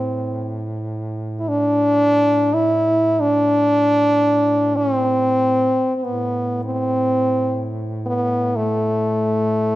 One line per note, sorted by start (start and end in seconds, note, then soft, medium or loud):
0.00 5.87 A2 soft
0.00 0.68 C4 medium
1.40 1.50 E4 medium
1.48 2.55 D4 loud
2.54 3.22 E4 medium
3.20 4.78 D4 loud
4.77 4.95 C#4 medium
4.95 5.95 C4 medium
5.95 6.05 C4 medium
6.04 9.76 A2 soft
6.04 6.65 B3 medium
6.65 7.69 C4 medium
8.06 8.58 B3 medium
8.56 9.76 A3 medium